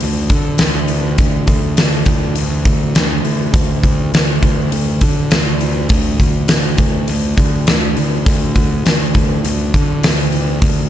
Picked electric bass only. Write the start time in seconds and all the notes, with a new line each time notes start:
0.03 D2
0.30 D3
0.61 D2
1.19 D2
1.47 D2
1.79 D2
2.06 D2
2.38 D2
2.66 D2
2.96 D2
3.24 D2
3.53 D2
4.14 D2
4.43 D2
4.73 D2
5.02 D3
5.32 D2
5.89 D2
6.20 D2
6.49 D2
6.79 D2
7.09 D2
7.37 D2
7.69 D2
7.98 D2
8.26 D2
8.86 D2
9.15 D2
9.45 D2
9.74 D3
10.04 D2
10.62 D2